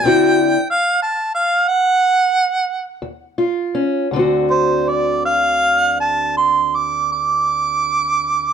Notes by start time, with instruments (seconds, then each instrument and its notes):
Already playing: harmonica A5
0.04 steel-string acoustic guitar D2 D3 C4 E4 F#4, harmonica G5
0.70 harmonica F5
1.02 harmonica A5
1.35 harmonica F5
1.68 harmonica F#5
3.02 steel-string acoustic guitar D#2
3.38 steel-string acoustic guitar F4
3.75 steel-string acoustic guitar C#4
4.11 steel-string acoustic guitar D2 D3
4.16 steel-string acoustic guitar C4 F#4
4.51 harmonica C5
4.89 harmonica D5
5.26 harmonica F5
6.00 harmonica A5
6.37 harmonica C6
6.76 harmonica D6
7.12 harmonica D6